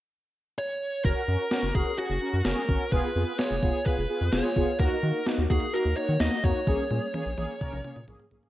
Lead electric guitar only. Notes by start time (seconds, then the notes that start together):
0.58 C#5
1.05 A#4
1.75 G#4
1.99 F#4
2.45 A#4
2.92 B4
3.39 C#5
3.86 B4
4.33 C#5
4.80 A#4
5.50 G#4
5.74 A#4
5.97 C#5
6.20 D#5
6.44 C#5